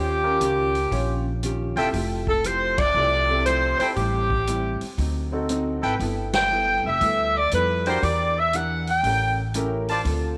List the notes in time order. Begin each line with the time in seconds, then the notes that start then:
Already playing: D#2 D#3 C#4 F4 G4
0.24 C#4 F4 G4 A#4
0.40 C#2 D#3 C#4 F4 G4, closed hi-hat
0.75 open hi-hat
0.91 A#1 D#3 C#4 F4 G4 C#5, kick, open hi-hat
1.43 D#3 C#4 F4 G4, closed hi-hat
1.76 E1 C4 E4 F4 G4 A4 E5 G5, open hi-hat
1.93 F1 F3 A3 E4 G4, kick, open hi-hat
2.27 A4, kick
2.44 F3 A3 E4 G4 C5, closed hi-hat
2.78 D5, kick, ride
2.94 C2 F3 A3 E4 G4
3.29 C4 E4 G4 A4
3.46 F3 A3 E4 G4 C5, closed hi-hat
3.79 E4 A4 C5 G5, muted upright bass stroke, open hi-hat
3.96 A1 A2 G3 C4 E4 G4, kick, open hi-hat
4.30 kick
4.47 A2 G3 C4 E4, closed hi-hat
4.81 muted upright bass stroke, open hi-hat
4.98 D2 D3 F#3 C4 D#4, kick, open hi-hat
5.32 C4 D#4 F#4 A4
5.49 D3 F#3 C4 D#4, closed hi-hat
5.82 G#1 E4 A4 B4 G5
5.99 G1 G3 B3 E4 A4, kick, open hi-hat
6.33 G5, snare, ride
6.51 G3 B3 E4 A4
6.84 F1 E5
7.01 D2 G3 B3 E4 A4, kick, open hi-hat
7.37 D5
7.51 F2 G3 B3 E4 A4 B4, closed hi-hat
7.86 D4 E4 F#4 G4 A#4 C5 D5 G5, open hi-hat
8.02 E2 E3 D4 G4 A#4 D5, kick, open hi-hat
8.39 E5
8.53 E3 D4 G4 A#4 F#5, closed hi-hat
8.87 G5, open hi-hat
9.03 A1 A3 C#4 G4 A#4, kick, open hi-hat
9.54 A3 C#4 E4 G4 A#4, closed hi-hat
9.88 F4 C5 D5 A5, open hi-hat
10.05 D2 D3 C4 F4 A4, kick, open hi-hat